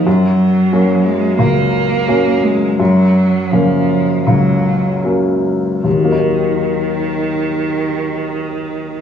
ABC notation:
X:1
M:4/4
L:1/8
Q:1/4=80
K:Ebm
V:1 name="Upright piano" clef=bass
G,,2 [G,B,D]2 D,,2 [G,B,D]2 | G,,2 [D,B,D]2 D,,2 [G,B,D]2 | [E,,E,G,B,EB]8 |]
V:2 name="Cello" clef=bass
G,3 A, B,3 A, | G,2 F,2 G,2 z2 | E,8 |]